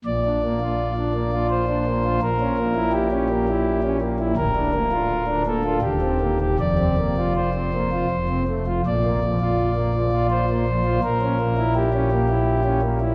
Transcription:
<<
  \new Staff \with { instrumentName = "Pipe organ" } { \time 3/4 \key bes \major \tempo 4 = 83 << { d''2 c''4 | bes'4 g'4. r8 | bes'4. a'8 g'4 | d''4 c''4. r8 |
d''2 c''4 | bes'4 g'4. r8 | } \\ { bes,16 d'16 bes16 f'8 d'16 bes16 f'8 d'16 bes16 f'16 | bes,16 des'16 bes16 fes'8 des'16 bes16 fes'8 des'16 bes16 fes'16 | d,16 d'16 bes16 f'8 d'16 bes16 f'16 ees,16 c'16 bes16 g'16 | f,16 c'16 bes16 f'8 c'16 bes16 f'16 f,16 c'16 a16 f'16 |
bes,16 bes16 f16 f'8 bes16 f16 f'8 bes16 f16 f'16 | bes,16 des'16 bes16 fes'8 des'16 bes16 fes'8 des'16 bes16 fes'16 | } >> }
  \new Staff \with { instrumentName = "Pipe organ" } { \clef bass \time 3/4 \key bes \major bes,,2. | bes,,2. | d,,2 ees,,4 | f,,2 f,,4 |
bes,,2. | bes,,2. | }
>>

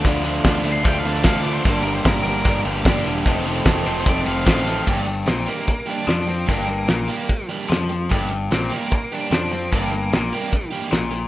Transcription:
<<
  \new Staff \with { instrumentName = "Lead electric guitar" } { \time 4/4 \key g \minor \tempo 4 = 149 r4 \tuplet 3/2 { r4 c'''8 g''8 f''8 d''8 f''8 d''8 c''8 } | \tuplet 3/2 { c''8 bes'8 c''8 bes'8 bes'4~ } bes'8 r4. | r4. c''8 d''8 f''8 f''4 | r4 c'8 bes4 d'4 c'8 |
bes8 bes2 r4. | r4 c'8 bes4 d'4 c'8 | bes8 bes2 r4. | }
  \new Staff \with { instrumentName = "Overdriven electric guitar" } { \time 4/4 \key g \minor <d a d' f'>8 <d a d' f'>8 <d a d' f'>8 <d a d' f'>8 <d a d' f'>8 <d a d' f'>8 <d a d' f'>8 <d a d' f'>8 | <g, d g bes d' g'>8 <g, d g bes d' g'>8 <g, d g bes d' g'>8 <g, d g bes d' g'>8 <g, d g bes d' g'>8 <g, d g bes d' g'>8 <g, d g bes d' g'>8 <g, d g bes d' g'>8 | <f c' ees' a'>8 <f c' ees' a'>8 <f c' ees' a'>8 <f c' ees' a'>8 <f c' ees' a'>8 <f c' ees' a'>8 <f c' ees' a'>8 <f c' ees' a'>8 | <g bes d' g'>8 r4 <g bes d' g'>8 r8 <g bes d' g'>8 r4 |
<g bes d' g'>8 r4 <g bes d' g'>8 r8 <g bes d' g'>8 r4 | <g bes d' g'>8 r4 <g bes d' g'>8 r8 <g bes d' g'>8 r4 | <g bes d' g'>8 r4 <g bes d' g'>8 r8 <g bes d' g'>8 r4 | }
  \new Staff \with { instrumentName = "Overdriven electric guitar" } { \clef bass \time 4/4 \key g \minor <d f a d'>8 <d f a d'>8 <d f a d'>8 <d f a d'>8 <d f a d'>8 <d f a d'>8 <d f a d'>8 <d f a d'>8 | <g, d g bes d'>8 <g, d g bes d'>8 <g, d g bes d'>8 <g, d g bes d'>8 <g, d g bes d'>8 <g, d g bes d'>8 <g, d g bes d'>8 <g, d g bes d'>8 | <f, c ees a c'>8 <f, c ees a c'>8 <f, c ees a c'>8 <f, c ees a c'>8 <f, c ees a c'>8 <f, c ees a c'>8 <f, c ees a c'>8 <f, c ees a c'>8 | g,4 bes,8 r4. f4 |
g,4 bes,8 r4. f4 | g,4 bes,8 r4. f4 | g,4 bes,8 r4. bes,4 | }
  \new Staff \with { instrumentName = "Picked electric bass" } { \clef bass \time 4/4 \key g \minor d,4 d,8 d,8 d,8 d,8 d,4 | g,,4 g,,8 g,,8 g,,8 g,,8 g,,8 e,,8 | f,,4 f,,8 f,,8 f,,8 f,,8 a,,4 | g,,4 bes,,8 r4. f,4 |
g,,4 bes,,8 r4. f,4 | g,,4 bes,,8 r4. f,4 | g,,4 bes,,8 r4. bes,,4 | }
  \new DrumStaff \with { instrumentName = "Drums" } \drummode { \time 4/4 <hh bd>8 hh16 hh16 <hh bd sn>8 hh8 <hh bd>8 <hh sn>16 hh16 <hh bd sn>16 hh16 hh8 | <hh bd>8 hh8 <hh bd sn>16 hh16 hh8 <hh bd>16 hh16 hh16 hh16 <hh bd sn>8 hh16 hh16 | <hh bd>8 hh16 hh16 <hh bd sn>8 hh8 <hh bd>8 hh16 hh16 <hh bd sn>16 hh16 hh8 | <cymc bd>8 hh8 <hh sn>8 hh8 <hh bd>8 hh8 <hh sn>8 <hh sn>8 |
<hh bd>8 hh8 <hh sn>8 hh8 <hh bd>8 hh8 <hh sn>8 hh8 | <hh bd>8 hh8 <hh sn>8 hh8 <hh bd>8 hh8 <hh sn>8 hh8 | <hh bd>8 hh8 <hh sn>8 hh16 sn16 <hh bd>8 hh8 <hh sn>8 hh8 | }
>>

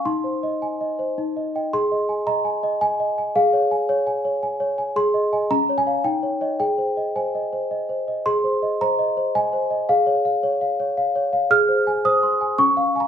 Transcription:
\new Staff \with { instrumentName = "Celesta" } { \time 3/4 \key aes \major \tempo 4 = 110 << { c'''2~ c'''8 r8 | c'''4 bes''4 aes''4 | f''2~ f''8 r8 | c'''4 bes''8 aes''8 g''4 |
g''4 aes''4 r4 | c'''4 bes''4 aes''4 | f''2~ f''8 r8 | f'''4 ees'''4 des'''8. bes''16 | } \\ { \tuplet 3/2 { ees'8 c''8 ees''8 aes''8 ees''8 c''8 ees'8 ees''8 <ees'' g''>8 } | \tuplet 3/2 { aes'8 ees''8 aes''8 ees''8 aes''8 ees''8~ ees''8 ees''8 aes''8 } | \tuplet 3/2 { aes'8 des''8 aes''8 des''8 aes''8 des''8 aes''8 des''8 aes''8 } | \tuplet 3/2 { aes'8 ees''8 <ees'' aes''>8 des'8 des''8 <des'' f''>8 ees'8 des''8 <des'' ees''>8 } |
\tuplet 3/2 { aes'8 c''8 ees''8 c''8 ees''8 c''8 ees''8 c''8 ees''8 } | \tuplet 3/2 { aes'8 c''8 ees''8 c''8 ees''8 c''8 ees''8 c''8 ees''8 } | \tuplet 3/2 { aes'8 des''8 f''8 des''8 f''8 des''8 f''8 des''8 f''8 } | \tuplet 3/2 { aes'8 c''8 aes''8 c''8 c'''8 aes''8 des'8 f''8 <f'' aes''>8 } | } >> }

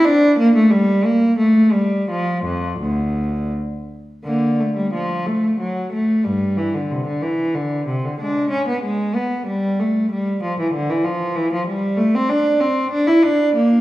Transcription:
\new Staff \with { instrumentName = "Cello" } { \clef bass \time 3/4 \key d \minor \tempo 4 = 93 d'8 bes16 a16 g8 bes8 a8 g8 | f8 f,8 d,4 r4 | <d bes>8 a16 g16 f8 a8 fis8 a8 | <g, g>8 e16 d16 c16 d16 e8 d8 c16 d16 |
<gis d'>8 cis'16 b16 gis8 b8 g8 a8 | g8 f16 e16 d16 e16 f8 e16 f16 g8 | a16 c'16 d'8 c'8 d'16 e'16 d'8 bes8 | }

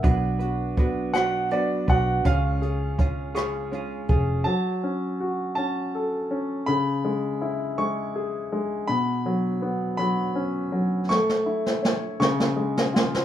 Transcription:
<<
  \new Staff \with { instrumentName = "Grand piano" } { \time 6/8 \key fis \minor \tempo 4. = 54 r4. fis''8 d''8 fis''8 | eis''4. cis'''4. | a''4. a''4. | b''4. cis'''4. |
b''4. b''4. | cis'''4. cis'''4. | }
  \new Staff \with { instrumentName = "Clean electric guitar" } { \time 6/8 \key fis \minor <b, fis d' fis' b'>8 <d' fis' b'>8 <fis d' fis' b'>8 <b, fis d' fis' b'>8 <fis d' fis' b'>8 <d' fis' b'>8 | <cis gis cis' eis' gis'>8 <cis' eis' gis'>8 <gis cis' eis' gis'>8 <cis gis cis' eis' gis'>8 <gis cis' eis' gis'>8 <cis' eis' gis'>8 | r2. | r2. |
r2. | r2. | }
  \new Staff \with { instrumentName = "Grand piano" } { \time 6/8 \key fis \minor b8 fis'8 b8 fis'8 b8 fis'8 | cis'8 gis'8 cis'8 gis'8 cis'8 gis'8 | fis8 cis'8 fis'8 cis'8 a'8 cis'8 | cis8 gis8 e'8 gis8 gis'8 gis8 |
b,8 fis8 b8 fis8 cis'8 fis8 | a8 e'8 cis''8 cis8 gis8 eis'8 | }
  \new Staff \with { instrumentName = "Fingered electric bass" } { \clef bass \time 6/8 \key fis \minor b,,2~ b,,8 b,,8 | cis,2~ cis,8 eis,,8 | r2. | r2. |
r2. | r2. | }
  \new DrumStaff \with { instrumentName = "Drums" } \drummode { \time 6/8 <hh bd>8 hh8 <hh bd>8 <hh ss>8 hh8 <hh bd>8 | <hh bd>8 hh8 <hh bd>8 <hh ss>8 hh8 <hh bd>8 | r4. r4. | r4. r4. |
r4. r4. | sn16 sn8 sn16 sn8 sn16 sn8 sn16 sn16 sn16 | }
>>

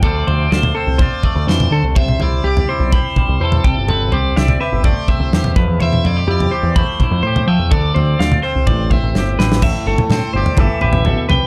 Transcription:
<<
  \new Staff \with { instrumentName = "Overdriven electric guitar" } { \time 4/4 \key a \minor \tempo 4 = 125 d''4 c''8 c''8 d''4 c''8. r16 | e''8 d''8 d''4 c''4 a'4 | b'8 d''4 e''8 c''4. r8 | e''8 d''8 d''4 c''4. e''8 |
d''4. c''2 r8 | r4 c''8 d''8 e''4. g''8 | }
  \new Staff \with { instrumentName = "Clean electric guitar" } { \time 4/4 \key a \minor a'8 c''8 d''8 a'8 c''8 d''4 a'8 | c''4 g'8 c''8 b''4 c''8 g''8 | a'8 c''8 e''8 b'8 d''8 e''4 b'8 | c''4 g'8 c''8 b''4 c''8 g''8 |
a'8 c''8 f''8 c''8 d''8 e''4 b'8 | e''8 a'4 c''8 a'8 b'8 a'8 b'8 | }
  \new Staff \with { instrumentName = "Clean electric guitar" } { \time 4/4 \key a \minor << { <a c' f' c''>8 c'8 f'8 c'8 f'2 | r8 e'8 g'8 e'8 g'4 e'8 r8 | c'8 g'8 c'8 g'4 c'8 g'8 r8 | e'8 e'16 g'16 e'8 g'4 e'8 g'8 r8 |
r8 c'8 f'8 c'4 c'8 g'8 c'8~ | c'4 c'8 g'4 g'4. | } \\ { d2~ d8 a8 e8 d8 | c2~ c8 g4 c8~ | c2 a4. f8~ | f2 a4. f8 |
d2 a,2 | a,8 a4. e4 b,8 c8 | } >> }
  \new Staff \with { instrumentName = "Picked electric bass" } { \clef bass \time 4/4 \key a \minor d,8 d,8 d,8 r16 c,8 r8 d,16 f,8 d16 c,16 | c,8 c,8 c,8 r16 b,,8 r8 c,16 e,8 c,16 g,,16~ | g,,8 c,8 c,8 r16 g,,8 r8 c,16 e,8 f,16 e,16~ | e,8 f,8 f,8 r16 e,8 r8 f,16 a,8 f16 e,16 |
d,8 d,8 d,8 r16 c,16 a,,8. a,,16 g,,8 a,,8 | a,,16 r16 g,,16 r16 a,16 r16 g,,16 r16 g,,16 r16 a,,8 a,,16 r16 c,16 r16 | }
  \new DrumStaff \with { instrumentName = "Drums" } \drummode { \time 4/4 <bd tomfh>8 tomfh8 sn16 <tomfh toml>8. <bd tomfh>8 <bd tomfh>8 sn16 <tomfh toml>8. | <bd tomfh>16 toml16 tomfh8 r16 tomfh8. <bd tomfh>8 <bd tomfh toml>8 r16 <tomfh toml>16 bd8 | tomfh8 tomfh8 sn16 <tomfh toml>8. <bd tomfh>8 <bd tomfh>8 sn16 <tomfh toml>16 bd8 | tomfh16 toml16 tomfh8 r16 tomfh8. <bd tomfh>8 <bd tomfh toml>8 r16 <tomfh toml>8. |
<bd tomfh>8 tomfh8 sn16 <tomfh toml>8. <bd tomfh>8 <bd tomfh>8 sn8 sn16 sn16 | <cymc bd tomfh>8. <tomfh toml>16 <sn toml>8. tomfh16 <bd tomfh>8 tomfh16 tomfh16 tomfh8 <tomfh toml>8 | }
>>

